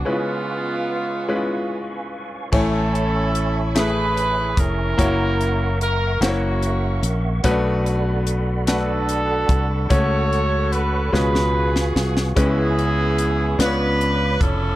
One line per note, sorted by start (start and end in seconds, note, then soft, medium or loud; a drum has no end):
0.00 2.48 B4 medium
0.00 2.48 G#5 soft
0.05 1.25 C#3 soft
0.05 0.99 G#3 medium
0.05 2.09 G#3 medium
0.05 2.08 B3 medium
0.05 0.99 C#4 medium
0.05 0.12 E4 soft
0.05 2.08 F4 medium
0.05 0.99 B4 medium
0.05 2.50 F5 soft
0.05 2.50 C#6 medium
0.12 1.02 F4 medium
1.28 2.22 G#3 medium
1.28 2.22 C#4 medium
1.28 1.35 E4 soft
1.28 2.22 B4 medium
1.35 2.25 F4 medium
2.52 4.54 A1 loud
2.52 3.71 A2 medium
2.52 3.45 A3 medium
2.52 3.72 C#4 medium
2.52 3.45 E4 medium
2.52 3.72 E4 medium
2.52 3.72 A4 loud
2.52 3.46 C#5 medium
2.52 4.97 C#5 medium
2.52 7.41 E5 medium
2.52 3.45 G#5 medium
2.52 4.96 G#5 medium
2.52 4.97 C#6 medium
2.52 kick medium
2.52 crash medium
2.95 closed hi-hat soft
3.35 closed hi-hat soft
3.75 4.68 A3 medium
3.75 4.68 E4 medium
3.75 4.57 E4 medium
3.75 4.68 G#4 medium
3.75 4.96 G#4 medium
3.75 4.59 B4 loud
3.75 4.69 E5 medium
3.75 snare loud
3.75 closed hi-hat medium
4.17 closed hi-hat soft
4.57 4.95 F1 medium
4.57 5.77 C#4 medium
4.57 5.77 E4 medium
4.57 5.81 A#4 loud
4.57 kick medium
4.57 closed hi-hat medium
4.98 6.18 F#1 medium
4.98 5.91 A#3 medium
4.98 5.91 E4 medium
4.98 5.91 F#4 medium
4.98 6.19 A#4 medium
4.98 5.92 C#5 medium
4.98 11.09 F#5 medium
4.98 7.42 C#6 medium
4.98 kick medium
4.98 closed hi-hat medium
5.41 closed hi-hat soft
5.81 6.19 A#4 medium
5.81 closed hi-hat soft
6.20 6.99 F#1 medium
6.20 7.14 A#3 medium
6.20 7.41 A#3 medium
6.20 7.41 C#4 medium
6.20 7.14 E4 medium
6.20 7.14 F#4 medium
6.20 7.15 F#4 medium
6.20 7.43 A#4 medium
6.20 6.28 C5 medium
6.20 snare loud
6.20 closed hi-hat medium
6.28 7.18 C#5 medium
6.63 closed hi-hat soft
7.03 7.41 A#1 medium
7.03 closed hi-hat medium
7.43 9.45 B1 loud
7.43 8.63 B2 medium
7.43 8.37 A3 medium
7.43 7.51 C#4 medium
7.43 8.38 F#4 medium
7.43 9.87 A4 medium
7.43 8.38 B4 loud
7.43 9.87 D5 medium
7.43 9.87 B5 medium
7.43 kick medium
7.43 closed hi-hat medium
7.51 8.41 D4 medium
7.86 closed hi-hat soft
8.27 closed hi-hat soft
8.67 9.60 A3 medium
8.67 9.60 D4 medium
8.67 9.87 D4 medium
8.67 9.61 F#4 medium
8.67 9.87 F#4 medium
8.67 9.86 A4 loud
8.67 9.61 B4 medium
8.67 snare loud
8.67 closed hi-hat medium
9.09 closed hi-hat medium
9.49 9.87 C2 medium
9.49 kick medium
9.49 closed hi-hat medium
9.89 11.09 C#2 loud
9.89 11.09 C#3 medium
9.89 10.83 A3 medium
9.89 10.83 C#4 medium
9.89 10.83 F#4 medium
9.89 11.10 F#4 medium
9.89 11.11 A4 medium
9.89 11.10 A4 medium
9.89 11.11 C#5 medium
9.89 10.72 C#5 loud
9.89 10.83 C#5 medium
9.89 11.11 C#6 medium
9.89 kick medium
9.89 closed hi-hat medium
10.33 closed hi-hat soft
10.72 11.12 B4 medium
10.72 closed hi-hat soft
11.12 11.91 C#2 medium
11.12 12.32 B2 medium
11.12 12.06 G#3 medium
11.12 12.06 C#4 medium
11.12 12.06 F4 medium
11.12 12.33 F4 medium
11.12 12.33 G#4 medium
11.12 12.06 B4 medium
11.12 12.02 B4 loud
11.12 13.57 B4 medium
11.12 12.35 F5 medium
11.12 13.57 G#5 medium
11.12 13.57 C#6 medium
11.12 snare medium
11.35 snare medium
11.76 snare medium
11.96 12.33 C2 medium
11.96 snare medium
12.17 snare medium
12.36 13.55 C#2 loud
12.36 13.55 C#3 medium
12.36 13.29 G#3 medium
12.36 13.57 B3 medium
12.36 13.29 C#4 medium
12.36 13.29 E4 medium
12.36 13.56 E4 medium
12.36 13.56 G#4 loud
12.36 13.29 B4 medium
12.36 13.58 E5 medium
12.36 kick medium
12.36 closed hi-hat medium
12.79 closed hi-hat soft
13.18 closed hi-hat soft
13.58 14.37 C#2 medium
13.58 14.76 C#3 medium
13.58 14.52 B3 medium
13.58 14.52 D4 medium
13.58 14.76 D4 medium
13.58 14.52 F4 medium
13.58 14.76 F4 medium
13.58 13.66 B4 medium
13.58 14.42 B4 medium
13.58 14.76 C#5 medium
13.58 14.76 B5 medium
13.58 14.76 D6 medium
13.58 snare loud
13.58 closed hi-hat medium
13.66 14.55 C#5 medium
14.01 closed hi-hat soft
14.41 14.76 F1 medium
14.41 14.76 C#4 medium
14.41 14.76 E4 medium
14.41 14.76 A4 loud
14.41 kick medium
14.41 closed hi-hat medium